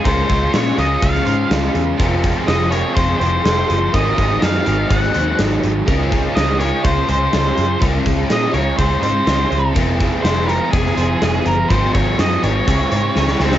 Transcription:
<<
  \new Staff \with { instrumentName = "Lead electric guitar" } { \time 4/4 \key des \major \tempo 4 = 124 c''4 des''8 ees''8 f''4 r4 | r4 ees''8 des''8 c''8 c''4. | ees''4 f''4 ges''4 r4 | r4 ees''8 des''8 c''8 c''4. |
r4 ees''8 des''8 c''8 c''4. | r4 c''8 bes'8 aes'4. bes'8 | c''8 des''8 ees''8 des''2 c'8 | }
  \new Staff \with { instrumentName = "Clean electric guitar" } { \time 4/4 \key des \major bes'8 aes'8 aes'8 bes'8 aes'8 c''8 aes'8 aes'8 | bes'8 aes'8 aes'8 bes'8 aes'8 c''8 aes'8 aes'8 | bes'8 aes'8 aes'8 bes'8 aes'8 c''8 aes'8 aes'8 | bes'8 aes'8 aes'8 bes'8 aes'8 c''8 aes'8 aes'8 |
bes'8 aes'8 aes'8 bes'8 aes'8 c''8 aes'8 aes'8 | bes'8 aes'8 aes'8 bes'8 aes'8 c''8 aes'8 aes'8 | bes'8 aes'8 aes'8 bes'8 aes'8 c''8 aes'8 aes'8 | }
  \new Staff \with { instrumentName = "Overdriven electric guitar" } { \time 4/4 \key des \major <des aes des' f' aes'>4. <des aes des' f' aes'>2~ <des aes des' f' aes'>8 | <f c' f' aes'>4. <f c' f' aes'>2~ <f c' f' aes'>8 | <aes, ees ges c' ees' aes'>4. <aes, ees ges c' ees' aes'>2~ <aes, ees ges c' ees' aes'>8 | <des aes des' f' aes'>4. <des aes des' f' aes'>2~ <des aes des' f' aes'>8 |
<des aes des' f' aes'>4. <des aes des' f' aes'>2~ <des aes des' f' aes'>8 | <f c' f' aes'>4. <f c' f' aes'>2~ <f c' f' aes'>8 | <aes, ees ges c' ees' aes'>4. <aes, ees ges c' ees' aes'>8 <des aes des' f' aes'>4. <des aes des' f' aes'>8 | }
  \new Staff \with { instrumentName = "Overdriven electric guitar" } { \clef bass \time 4/4 \key des \major <des f aes des' f'>2~ <des f aes des' f'>8 <des f aes des' f'>8 <des f aes des' f'>4 | <f, c f aes c' f'>2~ <f, c f aes c' f'>8 <f, c f aes c' f'>8 <f, c f aes c' f'>4 | <aes, ees ges c' ees'>2~ <aes, ees ges c' ees'>8 <aes, ees ges c' ees'>8 <aes, ees ges c' ees'>4 | <des aes des' f'>2~ <des aes des' f'>8 <des aes des' f'>8 <des aes des' f'>4 |
<des aes des' f'>2~ <des aes des' f'>8 <des aes des' f'>8 <des aes des' f'>4 | <f aes c' f'>2~ <f aes c' f'>8 <f aes c' f'>8 <f aes c' f'>4 | <aes, ees ges c' ges'>2 <des aes des' f' aes'>2 | }
  \new Staff \with { instrumentName = "Picked electric bass" } { \clef bass \time 4/4 \key des \major des,8 des,8 bes,8 des,8 des,8 aes,8 des,8 fes,8 | f,,4 f,,4 f,,8 f,,8 f,,8 ges,,8 | aes,,8 aes,,8 ges,8 aes,,8 aes,,8 ees,8 aes,,8 aes,,8 | des,4 des,4 des,8 des,8 des,8 ges,8 |
des,8 des,8 bes,8 des,8 des,8 aes,8 des,8 des,8 | f,,4 f,,4 f,,8 f,,8 f,,8 ges,,8 | aes,,8 aes,,8 ges,8 aes,,8 des,8 aes,8 des,8 des,8 | }
  \new DrumStaff \with { instrumentName = "Drums" } \drummode { \time 4/4 <hh bd>8 <hh bd>8 <hh sn>8 hh8 <hh bd>16 sn16 hh8 <hh sn>8 hh8 | <hh bd>8 <hh bd>8 <hh sn>8 hh8 <hh bd>8 hh8 <hh sn>8 hh8 | <hh bd>8 <hh bd>8 <hh sn>8 hh8 <hh bd>16 sn16 hh8 <hh sn>8 hh8 | <hh bd>8 <hh bd>8 <hh sn>8 hh8 <hh bd>8 hh8 <hh sn>8 hh8 |
<hh bd>8 <hh bd>8 <hh sn>8 hh8 <hh bd>8 hh8 <hh sn>8 hh8 | <hh bd>8 <hh bd>8 <hh sn>8 hh8 <hh bd>16 sn16 hh8 <hh sn>8 hh8 | <hh bd>8 <hh bd>8 <hh sn>8 hh8 <hh bd>8 hh8 sn16 sn16 sn16 sn16 | }
>>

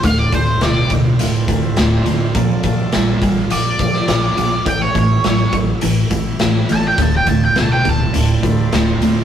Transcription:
<<
  \new Staff \with { instrumentName = "Lead electric guitar" } { \time 4/4 \key d \minor \tempo 4 = 104 f''16 d''16 c''8 d''8 r2 r8 | r2 d''2 | g''16 cis''16 cis''8 cis''8 r2 a''16 g''16 | a''16 g''16 a''16 g''16 a''16 g''16 a''2 r8 | }
  \new Staff \with { instrumentName = "Tonewheel organ" } { \time 4/4 \key d \minor <c' d' e' f'>1 | <bes f' a' d''>1 | <a e' g' cis''>1 | <c' e' f' d''>1 | }
  \new Staff \with { instrumentName = "Overdriven electric guitar" } { \clef bass \time 4/4 \key d \minor <d, a,>8 <d, a,>8 <d, b,>8 <d, b,>8 <d, a,>8 <d, a,>8 <d, a,>8 <d, a,>8 | <bes, f>8 <bes, f>8 <bes, g>8 <bes, g>8 <bes, f>8 <bes, f>8 <bes, f>8 <bes, f>8 | <a, e>8 <a, e>8 <a, fis>8 <a, fis>8 <a, e>8 <a, e>8 <a, e>8 <a, e>8 | <d, a,>8 <d, a,>8 <d, b,>8 <d, b,>8 <d, a,>8 <d, a,>8 <d, a,>8 <d, a,>8 | }
  \new Staff \with { instrumentName = "Upright bass" } { \clef bass \time 4/4 \key d \minor d,,8 d,,8 d,,8 d,,8 d,,8 d,,8 d,,8 d,,8 | bes,,8 bes,,8 bes,,8 bes,,8 bes,,8 bes,,8 bes,,8 bes,,8 | a,,8 a,,8 a,,8 a,,8 a,,8 a,,8 a,,8 a,,8 | d,,8 d,,8 d,,8 d,,8 d,,8 d,,8 d,,8 d,,8 | }
  \new DrumStaff \with { instrumentName = "Drums" } \drummode { \time 4/4 <hh bd>8 <hh bd>8 <hh sn>8 <hh bd>8 hh8 <hh bd>8 <hh sn>8 hh8 | <hh bd>8 <hh bd>8 <hh sn>8 <hh bd>8 hh8 <hh bd>16 sn16 <hh sn>8 hh8 | <hh bd>8 <hh bd>8 <hh sn>8 <hh bd>8 hh8 <hh bd>8 <hh sn>8 hh8 | <hh bd>8 <hh bd>8 <hh sn>8 <hh bd>8 hh8 <hh bd>8 <hh sn>8 hh8 | }
>>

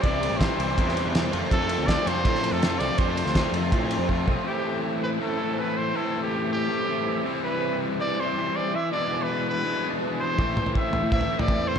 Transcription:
<<
  \new Staff \with { instrumentName = "Trumpet" } { \time 4/4 \key a \minor \tempo 4 = 162 d''4 c''2 r4 | a'4 d''8 c''4~ c''16 a'8. d''8 | c''4. r2 r8 | g'4 r8 b'8 a'4 b'8 c''8 |
a'8. g'8. g'2 r8 | b'4 r8 d''8 c''4 d''8 e''8 | d''8. b'8. b'4~ b'16 r8. c''8~ | c''4 e''4 e''8. d''8. c''8 | }
  \new Staff \with { instrumentName = "Overdriven electric guitar" } { \time 4/4 \key a \minor <c e g c' e'>4 <c e g c' e'>8 <c e g c' e'>8 <c e g c' e'>4 <c e g c' e'>8 <f a c' f'>8 | <f a c' f'>4 <f a c' f'>8 <f a c' f'>8 <f a c' f'>4 <f a c' f'>8 <f a c' f'>8 | <f a c' f'>4 <f a c' f'>8 <f a c' f'>8 <f a c' f'>4 <f a c' f'>8 <f a c' f'>8 | <a, e a c' e'>2~ <a, e a c' e'>8 <a, e a c' e'>8 <a, e a c' e'>4 |
<a, e a c' e'>2~ <a, e a c' e'>8 <a, e a c' e'>8 <a, e a c' e'>8 <c e g c' e'>8~ | <c e g c' e'>2 <c e g c' e'>8 <c e g c' e'>4 r8 | <b, e b d' gis'>2~ <b, e b d' gis'>8 <b, e b d' gis'>8 <b, e b d' gis'>4 | <a, e a c' e'>2~ <a, e a c' e'>8 <a, e a c' e'>8 <a, e a c' e'>4 | }
  \new Staff \with { instrumentName = "Overdriven electric guitar" } { \clef bass \time 4/4 \key a \minor <c e g c' e'>4 <c e g c' e'>8 <c e g c' e'>8 <c e g c' e'>4 <c e g c' e'>8 <f, c f a c' f'>8 | <f, c f a c' f'>4 <f, c f a c' f'>8 <f, c f a c' f'>8 <f, c f a c' f'>4 <f, c f a c' f'>8 <f, c f a c' f'>8 | <f, c f a c' f'>4 <f, c f a c' f'>8 <f, c f a c' f'>8 <f, c f a c' f'>4 <f, c f a c' f'>8 <f, c f a c' f'>8 | <a, e a c' e'>2 <a, e a c' e'>2 |
<a, e a c' e'>2 <a, e a c' e'>4. <c e g c' e'>8~ | <c e g c' e'>4. <c e g c' e'>2 r8 | <b, e gis d' e'>2 <b, e gis d' e'>2 | <a, e a c' e'>2 <a, e a c' e'>2 | }
  \new Staff \with { instrumentName = "Picked electric bass" } { \clef bass \time 4/4 \key a \minor c,8. a,,8 r16 c,8 e,8. e,8. f,16 r16 | f,8. d,8 r16 f,8 a,8. f,8. c,16 r16 | f,8. d,8 r16 f,8 a,8. f,8. b,,16 r16 | r1 |
r1 | r1 | r1 | a,,8 r4 a,,16 a,8 r8 a,8 e,8 r16 | }
  \new DrumStaff \with { instrumentName = "Drums" } \drummode { \time 4/4 <bd cymr>8 cymr8 <bd cymr sn>8 cymr8 <bd cymr>16 sn16 cymr8 <cymr sn>8 cymr8 | <bd cymr>8 cymr8 <bd cymr sn>8 cymr8 <bd cymr>16 sn16 cymr8 <cymr sn>8 cymr8 | <bd cymr>8 cymr16 sn16 <bd cymr sn>8 cymr8 <bd cymr>8 cymr8 bd8 bd8 | r4 r4 r4 r4 |
r4 r4 r4 r4 | r4 r4 r4 r4 | r4 r4 r4 r4 | <bd tomfh>8 <tomfh toml>16 tomfh16 bd8 tomfh8 <bd tomfh>16 tomfh8 tomfh16 bd8. tomfh16 | }
>>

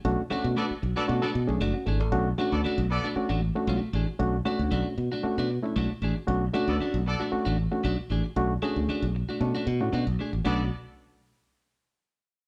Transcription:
<<
  \new Staff \with { instrumentName = "Horn section" } { \time 4/4 \key b \dorian \tempo 4 = 115 r4 <b a' d''>16 r8 <b a' d''>16 r16 <b a' d''>16 r4. | r8. <b a' d''>16 r8 <b a' d''>8 r2 | r1 | r8. <b a' d''>16 r8 <b a' d''>8 r2 |
r1 | <b a' d''>8 r2. r8 | }
  \new Staff \with { instrumentName = "Clean electric guitar" } { \time 4/4 \key b \dorian r8 <a d' fis'>16 r16 <a d' fis'>16 r8 <a d' fis'>16 r16 <a d' fis'>16 r8 <a d' fis'>16 r16 <a d' gis'>16 r16 | r8 <a d' fis'>16 r16 <a d' fis'>16 r8 <a d' fis'>16 r16 <a d' fis'>16 r8 <a d' fis'>8 <a d' gis'>16 r16 | r8 <a d' fis'>16 r16 <a d' fis'>16 r8 <a d' fis'>16 r16 <a d' fis'>16 r8 <a d' fis'>16 r16 <a d' gis'>16 r16 | r8 <a d' fis'>16 r16 <a d' fis'>16 r8 <a d' fis'>16 r16 <a d' fis'>16 r8 <a d' fis'>16 r16 <a d' gis'>16 r16 |
r8 <a d' fis'>16 r16 <a d' fis'>16 r8 <a d' fis'>16 r16 <a d' fis'>16 r8 <a d' fis'>16 r16 <a d' gis'>16 r16 | <a d' fis'>16 r2. r8. | }
  \new Staff \with { instrumentName = "Reed electric piano" } { \time 4/4 \key b \dorian << { r2. r16 <cis' fis'>16 <e' a'>16 <a' d''>16~ | <a' d''>16 r2. r8. | r1 | r1 |
r1 | r1 | } \\ { <a cis' d' fis'>16 r16 <a cis' d' fis'>8 r8 <d' fis'>16 r16 <a cis' d' fis'>16 r16 <d' fis'>16 <a cis' d' gis'>8 r8. | <a cis' d' fis'>16 r16 <a cis' d' fis'>4 r8 <a cis' d' fis'>8 r16 <a cis' d' fis'>8 r16 <d' fis'>16 <d' fis'>16 | <a cis' d' fis'>16 r16 <a cis' d' fis'>4 r8 <a cis' d' fis'>8 r16 <a cis' d' e'>8 r16 <d' fis'>16 <d' fis'>16 | <a cis' d' fis'>16 r16 <a cis' d' fis'>4 r8 <a cis' d' fis'>8 r16 <a cis' d' fis'>8 r16 <d' fis'>16 <d' fis'>16 |
<a cis' d' fis'>16 r16 <a cis' d' gis'>4 r8 <a cis' d' a'>8 r16 <a cis' d' fis'>8 r16 <d' fis'>16 <d' fis'>16 | <a cis' d' fis'>8 r2. r8 | } >> }
  \new Staff \with { instrumentName = "Fingered electric bass" } { \clef bass \time 4/4 \key b \dorian b,,16 r8 b,16 r8 b,,16 r16 b,16 r16 b,16 b,,16 fis,,16 r16 gis,,16 a,,16 | b,,8 r16 d,16 r16 b,,8 r8 a,,8 r16 b,,16 r16 a,,16 r16 | b,,8 r16 d,16 b,,16 r16 b,16 r8 b,8 r16 b,,16 r16 a,,16 r16 | b,,8 r16 d,16 r16 b,,8 r8 a,,8 r16 b,,16 r16 a,,16 r16 |
b,,8 r16 d,16 r16 b,,8 r16 b,16 r16 b,16 a,16 b,16 b,,16 r16 a,,16 | b,,8 r2. r8 | }
>>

